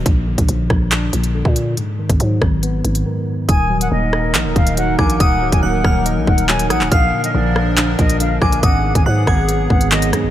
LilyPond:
<<
  \new Staff \with { instrumentName = "Synth bell" } { \time 4/4 \key ees \minor \tempo 4 = 140 r1 | r1 | ees'''4 r2 r8 d'''8 | ees'''4 ges'''8 f'''2 ees'''8 |
f'''4 r2 r8 d'''8 | ees'''4 ges'''8 aes'''4. r4 | }
  \new Staff \with { instrumentName = "Flute" } { \time 4/4 \key ees \minor r1 | r1 | aes''8. ges''16 ees''4 r8 f''8 ges''8 aes''8 | ges''8. aes''16 ges''4 r8 ges''8 aes''8 ges''8 |
f''8. ees''16 d''4 r8 ees''8 f''8 aes''8 | ges''8. aes''16 ges''4. ges''8 ees''8 r8 | }
  \new Staff \with { instrumentName = "Analog synth pad" } { \time 4/4 \key ees \minor r1 | r1 | <ges ees' bes'>1~ | <ges ees' bes'>1 |
<f d' bes'>1 | <ges ces' aes'>1 | }
  \new Staff \with { instrumentName = "Tine electric piano" } { \clef bass \time 4/4 \key ees \minor bes,8 d8 f4 d'8 bes,8 d4 | aes,8 ees8 ges4 ces'8 aes,8 ees4 | ees8 ges8 bes4 ees''8 ees8 ges4 | ees8 ges8 bes4 ees''8 ees8 ges4 |
bes,8 d8 f4 d'8 bes,8 d4 | aes,8 ees8 ges4 ces'8 aes,8 ees4 | }
  \new Staff \with { instrumentName = "808-style bass" } { \clef bass \time 4/4 \key ees \minor bes,,8. bes,,16 bes,,8 bes,,4 bes,,8. bes,8. | r8. aes,,16 aes,8 aes,,4 aes,,8 r4 | ees,,4 ees,,4 bes,,16 ees,,16 ees,,4 bes,,8 | ees,,8 d,,16 ees,,16 d,,8 ees,,8. bes,,16 ees,,4 bes,,16 ees,,16 |
bes,,8 r8 bes,,4. bes,,4 bes,,8 | aes,,8. aes,,16 aes,8 aes,,4 aes,,4 aes,16 aes,,16 | }
  \new DrumStaff \with { instrumentName = "Drums" } \drummode { \time 4/4 <hh bd>8. <hh bd>16 hh8 <bd ss>8 <hc hh>8 hh16 hh16 r16 bd16 hh8 | hh8. <hh bd>16 hh8 <bd ss>8 hh8 hh16 hh16 r4 | <hh bd>8. hh16 r8 ss8 <hc hh>8 <hh bd>16 hh16 hh8 <bd ss>16 hh16 | <hh bd>8. <hh bd>16 r8 <bd ss>8 hh8 bd16 hh16 hc16 hh16 <hh ss>16 hc16 |
<hh bd>8. hh16 r8 ss8 <hc hh>8 <hh bd>16 hh16 hh8 <bd ss>16 hh16 | <hh bd>8. <hh bd>16 r8 <bd ss>8 hh8 bd16 hh16 hc16 hh16 <hh ss>8 | }
>>